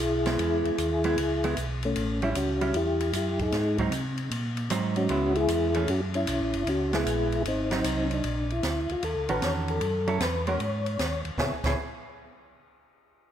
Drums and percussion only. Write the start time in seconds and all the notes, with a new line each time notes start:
0.26 snare, ride
0.39 ride
0.65 ride
0.78 hi-hat pedal, ride
1.04 ride
1.18 ride
1.44 ride
1.57 hi-hat pedal, ride
1.83 ride
1.96 ride
2.22 ride
2.35 hi-hat pedal, ride
2.61 ride
2.74 ride
3.00 ride
3.13 hi-hat pedal, ride
3.39 kick, ride
3.52 snare, ride
3.78 kick, ride
3.92 hi-hat pedal, ride
4.17 ride
4.31 ride
4.57 ride
4.70 hi-hat pedal, ride
4.96 ride
5.09 ride
5.35 ride
5.48 hi-hat pedal, ride
5.74 ride
5.88 ride
6.14 ride
6.27 hi-hat pedal, ride
6.53 ride
6.67 ride
6.93 snare, ride
7.06 hi-hat pedal, ride
7.32 ride
7.45 ride
7.71 snare, ride
7.84 hi-hat pedal, ride
8.11 ride
8.24 ride
8.50 ride
8.63 snare, hi-hat pedal, ride
8.89 ride
9.03 ride
9.29 ride
9.42 snare, hi-hat pedal, ride
9.68 ride
9.81 ride
10.07 ride
10.20 snare, hi-hat pedal, ride
10.47 ride
10.60 ride
10.86 ride
10.99 snare, hi-hat pedal, ride
11.25 ride
11.38 kick, snare
11.64 kick, snare, crash